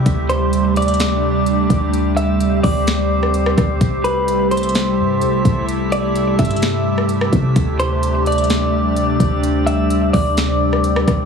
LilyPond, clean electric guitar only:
\new Staff \with { instrumentName = "Clean electric guitar" } { \time 4/4 \key d \dorian \tempo 4 = 128 r8 c''4 d''2~ d''8 | r8 e''4 d''2~ d''8 | r8 b'4 c''2~ c''8 | r8 d''4 e''4. r4 |
r8 c''4 d''2~ d''8 | r8 e''4 d''2~ d''8 | }